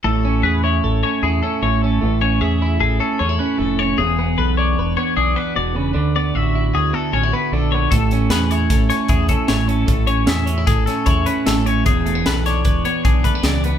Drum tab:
HH |----------|----------|----------|----------|
SD |----------|----------|----------|----------|
BD |----------|----------|----------|----------|

HH |xxxxxxxxxx|xxxxxxxxxx|xxxxxxxxxx|
SD |--o-oo--o-|--o--o--o-|--oo----o-|
BD |o---o-oo--|o---o-o---|o---o-oo--|